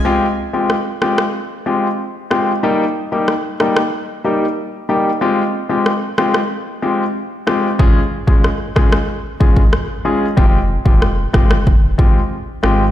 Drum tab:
SD |----r-rr------r-|----r-rr--------|----r-rr------r-|----r-rr----r---|
BD |----------------|----------------|----------------|o--o--o---oo----|

SD |----r-rr------r-|
BD |o--o--o-o-o-----|